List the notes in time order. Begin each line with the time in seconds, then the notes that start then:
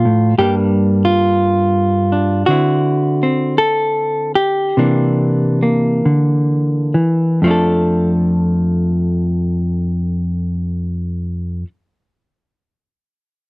Already playing: F3 A3 F4
0.05 A2
0.38 G2 G3 A#3 D4 G4
1.05 F4
2.12 D4
2.46 D3 C4 F#4
2.51 E4
3.23 C4
3.58 A4
4.35 G4
4.77 C3 E3 A#3 D4
5.63 A#3
6.05 D3
6.94 E3
7.42 F2 F3 A3
7.48 D4 A4